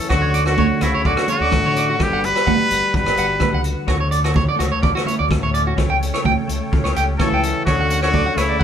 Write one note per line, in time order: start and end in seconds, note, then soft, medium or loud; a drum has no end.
0.00 closed hi-hat soft
0.08 0.69 D2 medium
0.08 1.99 D3 medium
0.08 1.05 C#4 medium
0.08 1.96 F#4 medium
0.08 0.17 F#4 medium
0.08 0.44 F#4 medium
0.08 1.96 C#5 medium
0.08 1.96 F#5 medium
0.08 muted clean electric guitar stroke medium
0.08 kick medium
0.08 cross-stick medium
0.08 muted conga soft
0.13 0.45 D3 medium
0.22 0.29 C#5 medium
0.33 0.41 D5 medium
0.33 closed hi-hat soft
0.33 muted conga soft
0.46 0.86 D3 medium
0.46 0.53 F#4 medium
0.46 0.83 F#4 medium
0.46 cross-stick medium
0.57 0.65 C#5 medium
0.57 kick medium
0.57 high conga loud
0.81 0.92 C#2 medium
0.81 1.09 C#3 medium
0.81 1.97 A3 medium
0.81 1.08 E4 medium
0.81 0.90 F#4 medium
0.81 cross-stick medium
0.81 closed hi-hat soft
0.94 1.14 D2 medium
0.94 1.01 C#5 medium
1.05 1.30 D3 medium
1.05 1.29 C#4 medium
1.05 1.29 F#4 medium
1.05 1.13 D5 medium
1.05 kick medium
1.17 1.25 F#4 medium
1.17 cross-stick medium
1.28 2.02 D3 medium
1.28 1.76 C#4 medium
1.28 2.04 F#4 loud
1.28 1.36 C#5 medium
1.28 closed hi-hat soft
1.28 high conga medium
1.40 1.60 D2 medium
1.40 1.48 D5 medium
1.51 2.00 A2 medium
1.51 kick medium
1.51 cross-stick medium
1.51 high conga medium
1.64 1.93 D3 medium
1.64 1.72 C#5 medium
1.75 1.98 C#4 medium
1.75 1.84 D5 medium
1.75 closed hi-hat soft
1.75 muted conga soft
1.90 1.96 F#4 medium
1.98 2.10 G1 loud
1.98 3.88 G3 medium
1.98 2.93 F#4 medium
1.98 3.86 B4 medium
1.98 5.73 F#5 loud
1.98 kick medium
1.98 cross-stick medium
1.98 muted conga soft
2.02 2.28 D3 medium
2.02 2.27 G4 loud
2.12 2.32 G1 medium
2.12 2.19 F#5 medium
2.24 2.96 G3 medium
2.24 2.95 B4 loud
2.24 closed hi-hat soft
2.24 muted conga soft
2.35 2.42 B4 medium
2.35 cross-stick medium
2.46 2.57 G1 medium
2.46 2.54 F#5 medium
2.46 kick medium
2.46 high conga loud
2.71 2.81 G1 medium
2.71 muted clean electric guitar stroke medium
2.71 closed hi-hat soft
2.94 3.04 G1 loud
2.94 3.62 G3 medium
2.94 3.62 B4 loud
2.94 muted clean electric guitar stroke medium
2.94 kick medium
2.94 muted conga soft
3.06 3.15 G1 medium
3.06 3.13 B4 medium
3.06 cross-stick medium
3.17 3.37 G1 medium
3.17 3.64 F#4 medium
3.17 3.25 F#5 medium
3.17 closed hi-hat soft
3.39 3.85 D3 medium
3.39 3.49 B4 medium
3.39 kick medium
3.39 cross-stick medium
3.39 high conga medium
3.53 3.73 C#2 medium
3.53 3.61 F#5 medium
3.64 3.86 F#4 medium
3.64 closed hi-hat soft
3.64 muted conga soft
3.87 4.47 D2 medium
3.87 5.76 D3 medium
3.87 3.95 F#4 medium
3.87 5.75 A4 medium
3.87 5.77 C#5 medium
3.87 7.62 C#5 medium
3.87 kick medium
3.87 cross-stick medium
4.00 4.07 C#5 medium
4.11 4.18 D5 medium
4.11 closed hi-hat soft
4.11 muted conga soft
4.24 4.31 F#4 medium
4.24 cross-stick medium
4.34 4.43 C#5 medium
4.34 kick loud
4.34 high conga loud
4.49 4.55 D5 medium
4.56 4.70 C#2 medium
4.56 6.47 A3 medium
4.56 4.66 F#4 medium
4.60 cross-stick medium
4.60 closed hi-hat soft
4.72 4.91 D2 medium
4.72 4.78 C#5 medium
4.81 5.53 C#4 medium
4.81 4.90 D5 medium
4.81 kick loud
4.95 5.02 F#4 medium
4.95 cross-stick medium
5.05 5.18 E4 medium
5.05 5.14 C#5 medium
5.05 closed hi-hat soft
5.05 high conga medium
5.19 5.39 D2 loud
5.19 5.25 D5 medium
5.28 5.76 A2 medium
5.28 kick medium
5.28 cross-stick medium
5.28 high conga medium
5.43 5.72 D2 medium
5.43 5.49 C#5 medium
5.53 6.71 C#4 medium
5.53 5.61 D5 medium
5.53 closed hi-hat soft
5.53 muted conga soft
5.67 5.73 F#4 medium
5.76 5.88 C#2 loud
5.76 7.18 C#3 medium
5.76 7.63 A4 medium
5.76 7.63 C#5 medium
5.76 7.63 G5 medium
5.76 kick medium
5.76 cross-stick medium
5.76 muted conga soft
5.90 6.09 C#2 medium
5.90 5.96 G5 medium
6.01 closed hi-hat soft
6.01 muted conga soft
6.14 6.20 C#5 medium
6.14 cross-stick medium
6.25 6.35 C#2 medium
6.25 6.32 G5 medium
6.25 kick medium
6.25 high conga medium
6.48 6.59 C#2 medium
6.48 7.63 A3 medium
6.48 closed hi-hat soft
6.72 6.82 C#2 medium
6.72 7.42 C#4 medium
6.72 kick medium
6.72 muted conga soft
6.84 6.93 C#2 medium
6.84 6.90 C#5 medium
6.84 cross-stick medium
6.95 7.16 C#2 medium
6.95 7.63 G4 medium
6.95 7.03 G5 medium
6.95 closed hi-hat soft
7.18 7.63 C#3 medium
7.18 7.64 E3 medium
7.18 7.62 A4 medium
7.18 7.27 C#5 medium
7.18 kick medium
7.18 cross-stick medium
7.18 high conga medium
7.32 7.51 C#2 medium
7.32 7.39 G5 medium
7.43 7.64 C#4 medium
7.43 closed hi-hat medium
7.65 8.26 D2 loud
7.65 8.01 D3 medium
7.65 8.59 C#4 medium
7.65 7.99 F#4 loud
7.65 8.64 A4 medium
7.65 8.64 C#5 medium
7.65 7.75 C#5 medium
7.65 8.64 F#5 medium
7.65 muted clean electric guitar stroke medium
7.65 kick medium
7.65 cross-stick medium
7.65 muted conga soft
7.81 7.86 F#5 medium
7.90 7.98 F#5 medium
7.90 closed hi-hat soft
7.90 muted conga soft
8.02 8.40 D3 medium
8.02 8.39 F#4 loud
8.02 8.09 C#5 medium
8.02 cross-stick medium
8.13 8.21 D5 medium
8.13 kick medium
8.13 high conga medium
8.26 8.32 F#5 medium
8.35 8.47 C#2 medium
8.35 8.64 C#3 medium
8.35 8.64 A3 medium
8.35 8.64 E4 medium
8.35 8.45 C#5 medium
8.35 cross-stick medium
8.35 closed hi-hat medium
8.49 8.64 D2 medium
8.49 8.56 D5 medium
8.60 8.64 F#5 medium
8.60 muted clean electric guitar stroke medium